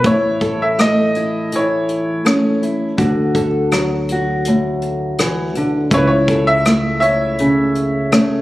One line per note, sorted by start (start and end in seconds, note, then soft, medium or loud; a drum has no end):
0.04 2.94 A1 medium
0.04 2.94 A2 medium
0.04 1.15 E4 soft
0.04 1.49 E4 medium
0.04 0.62 C#5 medium
0.04 kick medium
0.04 closed hi-hat soft
0.41 3.35 A4 medium
0.41 kick medium
0.41 closed hi-hat soft
0.62 0.80 E5 medium
0.78 2.25 A3 soft
0.78 1.55 D#5 medium
0.78 cross-stick medium
0.78 closed hi-hat medium
1.15 2.61 E4 soft
1.15 closed hi-hat soft
1.52 2.94 E3 medium
1.52 2.96 E4 soft
1.52 2.60 C#5 medium
1.52 closed hi-hat medium
1.89 closed hi-hat soft
2.25 3.71 A3 medium
2.25 2.94 C#4 medium
2.25 cross-stick medium
2.25 closed hi-hat medium
2.62 2.94 E4 medium
2.62 closed hi-hat soft
2.97 5.88 D2 medium
2.97 5.18 D3 medium
2.97 4.08 F#4 medium
2.97 kick medium
2.97 closed hi-hat medium
3.35 5.88 A4 medium
3.35 kick medium
3.35 closed hi-hat soft
3.71 5.92 F#3 soft
3.71 cross-stick medium
3.71 closed hi-hat medium
4.09 5.89 F#4 soft
4.09 closed hi-hat soft
4.45 5.89 A2 medium
4.45 closed hi-hat medium
4.82 closed hi-hat soft
5.18 5.56 E3 medium
5.18 cross-stick medium
5.18 closed hi-hat medium
5.55 5.92 D3 medium
5.55 closed hi-hat soft
5.91 8.41 C#2 medium
5.91 7.39 C#3 medium
5.91 7.35 E4 medium
5.91 7.00 E4 medium
5.91 5.99 C#5 medium
5.91 kick medium
5.91 closed hi-hat medium
5.97 6.05 B4 medium
6.07 6.45 C#5 medium
6.28 8.41 A4 medium
6.28 kick medium
6.28 closed hi-hat soft
6.47 6.99 E5 medium
6.65 8.11 A3 medium
6.65 cross-stick medium
6.65 closed hi-hat medium
7.00 8.41 E4 medium
7.00 8.41 C#5 medium
7.00 8.41 E5 medium
7.00 closed hi-hat soft
7.38 8.41 C#3 medium
7.38 closed hi-hat medium
7.75 closed hi-hat soft
8.12 8.41 A3 medium
8.12 8.41 C#4 medium
8.12 cross-stick medium
8.12 closed hi-hat medium